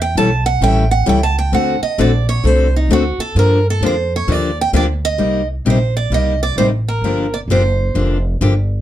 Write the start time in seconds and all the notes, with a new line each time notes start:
Already playing: E2
0.02 G5
0.15 B1 E3 G3 C#4 E4 A4 A5
0.46 F#5
0.61 A1 E3 G3 C#4 E4 A4 G5
0.91 F#5
1.06 C#2 E3 G3 C#4 E4 A4 G5
1.23 A5
1.39 G5
1.52 D2 D3 A3 C4 F#4 A4 F#5
1.81 D#5, muted upright bass stroke
1.98 A#1 D3 A3 C4 F#4 A4 D5
2.29 C#5
2.44 C2 D3 A3 C4 F#4 A4 C5
2.76 D#4
2.89 D2 D3 A3 C4 F#4 A4
2.93 F#4
3.18 A4, muted upright bass stroke
3.35 G2 D3 F3 A#3 D4 G4 A#4
3.70 A4
3.81 F2 D3 F3 A#3 D4 G4
3.86 C5
4.16 C#5
4.28 D#2 D3 F3 A#3 D4 G4
4.32 D5
4.61 G5
4.73 D2 D3 F3 A#3 D4 G4 D5
5.05 D#5
5.18 C2 C3 G3 A#3 D#4 G4
5.65 A#1 C3 G3 A#3 D#4 G4
5.70 C5
5.97 D5
6.10 C2 C3 G3 A#3 D#4 G4 D#5
6.43 D5
6.56 A1 C3 G3 A#3 D#4 G4 C5
6.88 A#4
7.02 G1 D3 F3 A#3 D4 G4
7.34 D5
7.48 F#1 D3 F3 A#3 D4 G4 C5
7.94 F1 D3 F3 A#3 D4 G4
8.41 G1 D3 F3 A#3 D4 G4